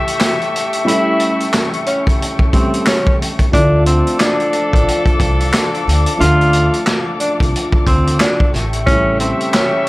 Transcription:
0.00 0.84 C#3 medium
0.00 0.83 G3 medium
0.00 0.83 A3 medium
0.00 2.83 A3 medium
0.00 0.85 E4 medium
0.00 2.83 G4 medium
0.00 3.50 A4 medium
0.00 2.83 E5 loud
0.00 3.50 E5 medium
0.00 3.50 G5 medium
0.00 3.50 C#6 medium
0.07 closed hi-hat medium
0.20 snare loud
0.20 clap medium
0.20 closed hi-hat loud
0.41 closed hi-hat soft
0.56 closed hi-hat medium
0.73 closed hi-hat medium
0.85 2.49 G3 medium
0.85 2.50 A3 medium
0.85 2.51 C#4 medium
0.85 1.50 E4 loud
0.85 closed hi-hat loud
0.89 2.51 E4 medium
1.20 closed hi-hat medium
1.40 closed hi-hat soft
1.53 snare loud
1.53 clap medium
1.53 closed hi-hat medium
1.73 closed hi-hat soft
1.86 2.04 C#4 medium
1.86 closed hi-hat medium
2.07 kick medium
2.07 closed hi-hat medium
2.22 closed hi-hat medium
2.39 kick medium
2.53 3.54 C#3 soft
2.53 3.53 G3 soft
2.53 3.52 A3 soft
2.53 2.83 C4 medium
2.53 3.54 G4 medium
2.53 kick medium
2.53 closed hi-hat medium
2.74 closed hi-hat medium
2.86 3.17 C#4 medium
2.86 snare loud
2.86 clap loud
2.86 closed hi-hat medium
3.07 kick medium
3.22 closed hi-hat medium
3.39 kick medium
3.39 closed hi-hat medium
3.52 4.01 D2 loud
3.52 6.15 F3 medium
3.52 8.16 F3 medium
3.52 6.16 A3 medium
3.52 8.16 D4 loud
3.52 3.83 D4 loud
3.52 6.17 D4 medium
3.52 8.16 A4 loud
3.52 8.50 A4 medium
3.52 8.50 D5 medium
3.52 8.50 F5 medium
3.52 8.50 D6 medium
3.52 kick loud
3.52 closed hi-hat loud
3.57 3.63 E4 medium
3.63 6.20 F4 medium
3.86 4.17 C4 medium
3.86 closed hi-hat medium
4.07 closed hi-hat soft
4.20 4.70 D4 medium
4.20 snare loud
4.20 clap medium
4.20 closed hi-hat medium
4.40 closed hi-hat soft
4.53 closed hi-hat medium
4.73 4.86 A1 medium
4.73 5.03 D4 medium
4.73 kick medium
4.73 closed hi-hat medium
4.88 closed hi-hat medium
5.06 kick medium
5.06 closed hi-hat soft
5.20 5.50 C2 medium
5.20 kick medium
5.20 closed hi-hat medium
5.40 closed hi-hat medium
5.53 snare loud
5.53 clap loud
5.53 closed hi-hat loud
5.74 closed hi-hat soft
5.87 6.05 D2 medium
5.87 closed hi-hat medium
6.06 closed hi-hat medium
6.17 6.67 D2 loud
6.17 8.48 F3 medium
6.17 8.49 A3 medium
6.17 8.50 D4 medium
6.17 6.83 F4 loud
6.17 closed hi-hat medium
6.22 8.50 F4 medium
6.41 closed hi-hat soft
6.53 closed hi-hat medium
6.74 closed hi-hat soft
6.86 snare loud
6.86 clap medium
6.86 closed hi-hat medium
7.20 7.38 D4 medium
7.20 closed hi-hat medium
7.40 7.52 C2 loud
7.40 kick medium
7.40 closed hi-hat medium
7.56 closed hi-hat medium
7.72 kick medium
7.87 8.16 D2 medium
7.87 8.17 C4 medium
7.87 kick medium
7.87 closed hi-hat medium
8.07 closed hi-hat medium
8.20 8.50 D4 medium
8.20 snare loud
8.20 clap loud
8.20 closed hi-hat medium
8.40 kick medium
8.53 9.30 A1 loud
8.53 9.89 A3 medium
8.53 9.89 G4 loud
8.53 9.89 A4 medium
8.53 9.89 E5 medium
8.53 9.89 E5 loud
8.53 9.89 G5 medium
8.53 9.89 C#6 medium
8.53 snare soft
8.53 closed hi-hat medium
8.73 closed hi-hat medium
8.86 9.89 C#3 medium
8.86 9.89 G3 medium
8.86 9.89 A3 medium
8.86 9.17 C#4 loud
8.86 kick loud
8.86 closed hi-hat loud
8.91 9.89 E4 medium
9.20 9.50 C4 medium
9.20 closed hi-hat medium
9.40 closed hi-hat soft
9.53 9.89 C#4 medium
9.53 snare loud
9.53 clap medium
9.53 closed hi-hat medium

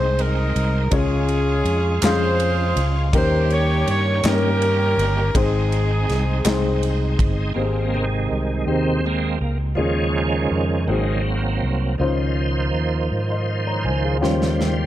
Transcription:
0.00 0.51 C2 medium
0.00 0.93 G#2 medium
0.00 0.88 G#3 medium
0.00 0.91 G#3 medium
0.00 0.88 C4 medium
0.00 0.93 C4 medium
0.00 0.15 D#4 medium
0.00 0.88 D#4 medium
0.00 0.93 D#4 medium
0.00 0.92 G#4 medium
0.00 0.19 C5 medium
0.00 0.93 C5 medium
0.19 0.90 D#4 medium
0.19 0.93 A#4 medium
0.19 ride soft
0.56 0.89 C2 loud
0.56 ride soft
0.91 1.61 C#2 loud
0.91 1.98 C#3 medium
0.91 1.78 G#3 medium
0.91 3.09 G#3 medium
0.91 1.78 C#4 medium
0.91 3.09 C#4 medium
0.91 0.98 E4 medium
0.91 1.78 F4 medium
0.91 2.00 F4 medium
0.91 1.78 G#4 medium
0.91 1.78 C#5 medium
0.91 kick loud
0.91 ride medium
0.96 2.00 C#4 medium
0.96 3.12 F4 medium
0.96 2.04 G#4 loud
1.28 ride soft
1.64 1.99 F2 medium
1.64 ride soft
2.02 2.72 F2 medium
2.02 2.89 G#3 medium
2.02 2.89 C#4 medium
2.02 2.89 F4 medium
2.02 3.10 F4 medium
2.02 3.10 G#4 medium
2.02 2.90 G#4 medium
2.02 2.87 C5 loud
2.02 2.90 F5 medium
2.02 snare loud
2.02 clap medium
2.02 ride medium
2.40 ride soft
2.76 3.10 C#2 loud
2.76 ride soft
3.13 3.83 D#2 loud
3.13 5.31 D#3 medium
3.13 4.20 D#3 medium
3.13 5.31 G3 medium
3.13 3.99 A#3 medium
3.13 5.30 A#3 medium
3.13 5.30 C#4 medium
3.13 3.99 C#4 medium
3.13 4.00 D#4 medium
3.13 5.31 G4 medium
3.13 4.00 G4 medium
3.13 4.21 G4 medium
3.13 4.00 A#4 medium
3.13 3.49 C5 loud
3.13 kick loud
3.13 ride medium
3.50 3.88 C#5 loud
3.50 ride soft
3.87 4.21 G2 medium
3.87 4.23 C#5 loud
3.87 ride soft
4.23 4.94 G2 loud
4.23 5.10 A#3 medium
4.23 5.10 C#4 medium
4.23 5.32 C#4 medium
4.23 5.10 D#4 medium
4.23 5.11 G4 medium
4.23 5.32 G4 medium
4.23 5.11 C#5 medium
4.23 snare loud
4.23 clap medium
4.23 ride medium
4.28 5.37 A#4 loud
4.62 ride soft
4.97 5.31 G1 medium
4.97 ride soft
5.34 6.04 G#1 loud
5.34 6.42 G#2 medium
5.34 6.21 G#3 medium
5.34 7.53 G#3 medium
5.34 6.21 C4 medium
5.34 7.53 C4 medium
5.34 6.79 C4 medium
5.34 6.21 D#4 medium
5.34 7.53 D#4 medium
5.34 6.79 D#4 medium
5.34 6.22 G#4 medium
5.34 6.84 G#4 medium
5.34 6.22 C5 medium
5.34 kick loud
5.34 ride medium
5.72 ride soft
6.09 6.43 C2 medium
6.09 snare soft
6.09 ride soft
6.45 7.15 C2 loud
6.45 7.32 G#3 medium
6.45 7.32 C4 medium
6.45 7.32 D#4 medium
6.45 7.32 G#4 medium
6.45 7.32 C5 medium
6.45 snare loud
6.45 clap loud
6.45 ride medium
6.83 ride soft
7.19 7.53 G1 medium
7.19 kick medium
7.19 ride soft
7.54 8.26 G#1 medium
7.54 8.63 G#2 medium
7.54 7.95 G#3 soft
7.54 8.05 A#3 soft
7.54 8.42 C4 medium
7.54 8.05 C4 soft
7.54 8.43 D#4 medium
7.54 8.43 G4 medium
7.54 8.43 G#4 medium
7.94 9.01 C3 soft
7.94 9.01 D#3 soft
7.94 8.65 G#3 medium
8.30 8.64 C2 medium
8.66 9.37 D#2 medium
8.66 9.53 C4 soft
8.66 9.05 C4 medium
8.66 9.54 D#4 soft
8.66 9.54 G4 soft
8.66 9.54 G#4 soft
9.06 9.38 G#3 soft
9.06 9.39 A#3 soft
9.06 9.39 C4 medium
9.41 9.75 C#2 medium
9.41 9.58 A#3 medium
9.75 10.48 D#2 medium
9.75 11.22 C#3 soft
9.75 11.22 D#3 soft
9.75 10.85 D#3 soft
9.75 10.84 F3 soft
9.75 11.22 G#3 medium
9.75 10.64 C#4 medium
9.75 10.85 C#4 soft
9.75 10.64 D#4 soft
9.75 10.64 F4 medium
9.75 10.65 G#4 medium
10.51 10.86 F2 medium
10.87 11.59 G#1 medium
10.87 11.96 G#2 medium
10.87 11.95 F#3 soft
10.87 11.96 A#3 soft
10.87 11.96 C4 soft
10.87 11.75 C4 medium
10.87 11.76 D#4 medium
10.87 11.76 F#4 soft
10.87 11.76 G#4 medium
11.62 11.97 C2 medium
11.98 12.70 C#2 medium
11.98 13.08 C#3 medium
11.98 14.18 D#3 soft
11.98 14.17 F3 soft
11.98 12.87 C#4 medium
11.98 12.87 D#4 medium
11.98 12.87 F4 medium
11.98 14.18 C5 soft
11.98 12.87 C5 medium
12.73 13.08 D#2 medium
13.11 13.86 G#2 medium
13.30 13.66 D#5 soft
13.30 13.65 C6 soft
13.67 13.85 C#5 soft
13.67 13.85 A#5 medium
13.84 14.21 C#2 medium
13.84 14.03 C5 soft
13.84 14.03 G#5 medium
14.04 14.39 G#4 soft
14.04 14.40 F5 soft
14.21 14.86 D#2 medium
14.21 14.86 C#3 soft
14.21 14.86 D#3 medium
14.21 14.86 F3 soft
14.21 14.86 G3 soft
14.21 14.86 C#4 medium
14.21 14.86 F4 medium
14.21 14.86 G4 medium
14.21 14.86 C5 medium
14.21 14.86 C5 soft
14.21 snare soft
14.42 snare soft
14.61 snare soft

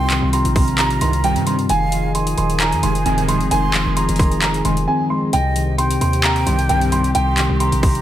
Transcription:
0.00 0.21 C2 loud
0.00 0.33 C3 medium
0.00 0.10 D#3 medium
0.00 1.66 D#3 medium
0.00 0.78 G3 medium
0.00 0.56 C4 loud
0.00 1.66 C4 medium
0.00 1.68 F4 medium
0.00 0.30 G5 loud
0.00 0.30 C6 loud
0.10 1.24 D#3 medium
0.10 clap medium
0.10 closed hi-hat medium
0.22 0.44 C2 loud
0.33 0.55 C3 medium
0.33 1.65 A#5 medium
0.33 0.51 C6 medium
0.33 closed hi-hat medium
0.45 0.99 A#1 loud
0.45 closed hi-hat medium
0.56 0.77 C3 medium
0.56 0.74 C6 medium
0.56 kick loud
0.56 open hi-hat medium
0.68 closed hi-hat medium
0.78 1.69 C3 medium
0.78 0.97 A#5 loud
0.78 clap loud
0.78 closed hi-hat medium
0.91 closed hi-hat medium
1.01 1.38 C2 loud
1.01 1.11 G2 medium
1.01 1.11 C3 medium
1.01 1.12 D#3 loud
1.01 1.19 C6 medium
1.01 closed hi-hat medium
1.13 closed hi-hat medium
1.24 1.57 G2 loud
1.24 1.57 C3 loud
1.24 1.57 D#3 loud
1.24 1.69 C4 medium
1.24 1.42 G5 loud
1.24 closed hi-hat medium
1.36 1.68 G2 loud
1.36 closed hi-hat medium
1.47 1.69 G3 medium
1.47 1.65 C6 medium
1.47 closed hi-hat medium
1.59 closed hi-hat soft
1.69 2.35 F1 loud
1.69 2.14 D#3 medium
1.69 5.29 F3 medium
1.69 5.29 D#4 medium
1.69 5.29 G#4 medium
1.69 2.12 F5 loud
1.69 2.12 G#5 loud
1.69 closed hi-hat medium
1.92 3.06 F3 medium
1.92 closed hi-hat medium
2.15 2.36 D#3 medium
2.15 3.47 G#5 loud
2.15 2.33 C6 medium
2.15 closed hi-hat medium
2.27 closed hi-hat medium
2.38 2.74 D#1 loud
2.38 2.59 D#3 loud
2.38 2.56 C6 medium
2.38 closed hi-hat medium
2.50 closed hi-hat medium
2.60 3.50 D#3 medium
2.60 2.78 A#5 medium
2.60 clap loud
2.60 closed hi-hat medium
2.72 2.83 F2 loud
2.72 closed hi-hat medium
2.83 3.05 F1 loud
2.83 2.93 G#2 loud
2.83 2.93 C3 medium
2.83 2.93 D#3 loud
2.83 3.01 C6 medium
2.83 closed hi-hat medium
2.95 closed hi-hat medium
3.06 3.49 F1 loud
3.06 3.39 G#2 loud
3.06 3.39 C3 loud
3.06 3.39 D#3 loud
3.06 4.20 C4 loud
3.06 3.24 G#5 medium
3.06 closed hi-hat medium
3.18 closed hi-hat medium
3.28 4.42 G#3 medium
3.28 3.46 C6 medium
3.28 closed hi-hat medium
3.41 closed hi-hat soft
3.51 3.85 F1 loud
3.51 3.96 D#3 loud
3.51 3.94 G#5 loud
3.51 3.94 C6 loud
3.51 closed hi-hat medium
3.74 4.88 F3 medium
3.74 clap loud
3.74 closed hi-hat medium
3.86 4.08 F1 loud
3.97 4.18 D#3 medium
3.97 4.61 A#5 medium
3.97 4.15 C6 medium
3.97 closed hi-hat medium
4.09 4.63 F1 loud
4.09 closed hi-hat medium
4.16 4.41 D#3 loud
4.16 4.37 C6 medium
4.16 kick loud
4.16 closed hi-hat medium
4.16 open hi-hat medium
4.31 closed hi-hat medium
4.42 5.33 D#3 medium
4.42 4.60 A#5 medium
4.42 clap loud
4.42 closed hi-hat medium
4.54 closed hi-hat medium
4.65 4.87 F1 loud
4.65 4.75 G#2 medium
4.65 4.75 C3 loud
4.65 4.75 D#3 loud
4.65 4.86 G#5 medium
4.65 4.83 C6 medium
4.65 closed hi-hat medium
4.77 closed hi-hat medium
4.88 5.33 C4 loud
4.88 5.06 G#5 medium
5.10 5.33 G#3 medium
5.10 5.28 C6 medium
5.33 5.99 C2 loud
5.33 5.77 C3 medium
5.33 8.02 D#3 medium
5.33 8.02 C4 medium
5.33 8.02 G4 medium
5.33 5.76 D#5 loud
5.33 5.76 G5 loud
5.33 closed hi-hat medium
5.56 6.69 D#3 medium
5.56 closed hi-hat medium
5.78 6.00 C3 medium
5.78 7.11 G5 loud
5.78 5.96 C6 medium
5.78 closed hi-hat medium
5.91 closed hi-hat medium
6.01 6.45 D#2 loud
6.01 6.23 C3 medium
6.01 6.19 C6 medium
6.01 closed hi-hat medium
6.13 closed hi-hat medium
6.24 7.14 C3 medium
6.24 6.42 A#5 loud
6.24 clap loud
6.24 closed hi-hat medium
6.36 closed hi-hat medium
6.47 6.68 C2 loud
6.47 6.57 G2 medium
6.47 6.57 C3 medium
6.47 6.57 D#3 medium
6.47 6.65 C6 medium
6.47 closed hi-hat medium
6.59 closed hi-hat medium
6.69 7.13 C2 loud
6.69 7.02 G2 loud
6.69 7.02 C3 loud
6.69 7.02 D#3 loud
6.69 7.83 C4 loud
6.69 6.87 G5 loud
6.69 closed hi-hat medium
6.81 closed hi-hat medium
6.92 8.02 G3 medium
6.92 7.10 C6 medium
6.92 closed hi-hat medium
7.04 closed hi-hat soft
7.15 7.48 C2 loud
7.15 7.59 C3 medium
7.15 7.58 G5 loud
7.15 7.58 C6 loud
7.15 closed hi-hat medium
7.38 8.02 D#3 medium
7.38 clap medium
7.38 closed hi-hat medium
7.50 7.71 C2 loud
7.60 7.82 C3 medium
7.60 8.02 A#5 medium
7.60 7.78 C6 medium
7.60 closed hi-hat medium
7.72 8.02 A#1 loud
7.72 closed hi-hat medium
7.83 8.02 C3 medium
7.83 8.01 C6 medium
7.83 kick loud
7.83 open hi-hat medium
7.95 closed hi-hat medium

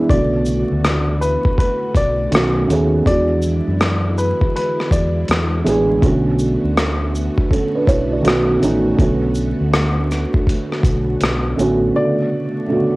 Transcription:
0.00 0.12 E3 medium
0.00 2.28 E3 medium
0.00 0.12 G#3 medium
0.00 0.11 B3 medium
0.00 5.98 B3 medium
0.00 0.12 D4 medium
0.00 0.11 E4 medium
0.09 0.63 B1 loud
0.09 1.16 C#3 medium
0.09 1.14 D3 medium
0.09 3.03 A3 medium
0.09 1.15 A3 medium
0.09 1.15 B3 medium
0.09 2.29 F#4 medium
0.09 1.17 D5 medium
0.09 kick loud
0.09 closed hi-hat medium
0.13 1.16 F#4 medium
0.46 shaker soft
0.71 1.35 D2 medium
0.84 cross-stick loud
0.84 closed hi-hat medium
1.21 1.54 B4 medium
1.21 shaker soft
1.45 kick medium
1.58 1.92 B4 medium
1.58 kick medium
1.58 closed hi-hat medium
1.95 2.27 B1 medium
1.95 2.29 D5 medium
1.95 kick medium
1.95 closed hi-hat medium
1.95 shaker soft
2.31 2.64 B1 medium
2.31 2.63 D#3 medium
2.31 3.05 D#3 medium
2.31 2.64 A3 medium
2.31 2.64 B3 medium
2.31 2.65 C#4 medium
2.31 3.05 F#4 medium
2.31 closed hi-hat medium
2.35 2.66 F#4 medium
2.35 cross-stick loud
2.67 3.01 D#2 medium
2.67 2.97 D#3 medium
2.67 2.98 A3 medium
2.67 2.99 B3 medium
2.67 2.99 C#4 medium
2.67 closed hi-hat soft
2.67 shaker soft
2.72 3.00 G#4 medium
3.05 3.59 E2 loud
3.05 8.20 D3 medium
3.05 4.10 E3 medium
3.05 5.99 G#3 medium
3.05 4.11 G#3 medium
3.05 4.11 B3 medium
3.05 4.12 D4 medium
3.05 5.99 E4 medium
3.05 4.14 D5 medium
3.05 kick medium
3.05 closed hi-hat medium
3.10 4.13 F#4 medium
3.42 shaker medium
3.68 4.32 F#2 medium
3.81 cross-stick loud
3.81 closed hi-hat medium
4.18 4.51 B4 medium
4.18 shaker soft
4.41 kick medium
4.56 4.88 B4 medium
4.56 closed hi-hat medium
4.80 cross-stick soft
4.91 5.23 E2 medium
4.91 5.49 D5 medium
4.91 kick medium
4.91 closed hi-hat soft
4.91 shaker medium
5.28 5.61 E2 loud
5.28 cross-stick loud
5.28 closed hi-hat medium
5.64 5.98 A1 medium
5.64 5.94 E3 medium
5.64 5.94 G#3 medium
5.64 5.95 B3 medium
5.64 5.96 D4 medium
5.64 closed hi-hat medium
5.64 shaker soft
5.69 5.96 G#4 loud
6.00 6.56 B1 loud
6.00 7.06 D3 medium
6.00 7.07 A3 medium
6.00 11.91 A3 medium
6.00 7.07 B3 medium
6.00 11.91 B3 medium
6.00 7.08 C#4 medium
6.00 11.91 F#4 medium
6.00 kick loud
6.00 closed hi-hat medium
6.05 7.09 F#4 medium
6.39 shaker soft
6.64 7.28 D2 medium
6.77 cross-stick loud
6.77 closed hi-hat medium
7.15 shaker soft
7.38 kick medium
7.51 7.74 C#4 soft
7.51 7.74 A4 medium
7.51 kick medium
7.51 closed hi-hat medium
7.75 7.87 D4 medium
7.75 7.87 B4 medium
7.87 8.20 B1 medium
7.87 8.11 E4 medium
7.87 8.11 C#5 medium
7.87 kick loud
7.87 closed hi-hat medium
7.87 shaker soft
8.12 8.25 F#4 soft
8.12 8.47 D5 medium
8.22 8.57 B1 medium
8.22 8.55 D#3 medium
8.22 8.99 D#3 medium
8.22 8.56 A3 medium
8.22 8.56 B3 medium
8.22 8.57 C#4 medium
8.22 closed hi-hat medium
8.26 8.57 F#4 loud
8.26 cross-stick loud
8.59 8.94 A1 medium
8.59 8.90 D#3 medium
8.59 8.90 A3 medium
8.59 8.91 B3 medium
8.59 8.91 C#4 medium
8.59 closed hi-hat soft
8.59 shaker medium
8.64 8.92 D#4 medium
8.96 9.52 B1 loud
8.96 10.02 D3 medium
8.96 11.92 D3 medium
8.96 10.03 A3 medium
8.96 10.04 B3 medium
8.96 10.04 C#4 medium
8.96 kick loud
8.96 closed hi-hat medium
9.01 10.05 F#4 medium
9.35 shaker soft
9.61 10.24 D2 medium
9.73 cross-stick loud
9.73 closed hi-hat medium
10.11 cross-stick soft
10.11 shaker soft
10.34 kick medium
10.47 kick medium
10.47 closed hi-hat medium
10.72 cross-stick soft
10.83 11.16 B1 medium
10.83 kick loud
10.83 closed hi-hat medium
10.83 shaker soft
11.21 11.53 B1 medium
11.21 cross-stick loud
11.21 closed hi-hat medium
11.56 11.90 A1 medium
11.56 11.86 D3 medium
11.56 11.87 A3 medium
11.56 11.87 B3 medium
11.56 11.88 C#4 medium
11.56 closed hi-hat soft
11.56 shaker soft
11.61 11.88 F#4 medium
11.94 12.96 B2 medium
11.94 12.51 C#3 medium
11.94 12.50 D3 medium
11.94 12.50 A3 medium
11.94 12.96 A3 medium
11.94 12.96 B3 medium
11.94 12.51 B3 medium
11.94 12.96 F#4 medium
11.94 12.96 D5 medium
11.98 12.52 F#4 medium
12.67 12.96 C#3 medium
12.67 12.96 D3 medium
12.67 12.96 A3 medium
12.67 12.96 B3 medium
12.72 12.96 F#4 medium

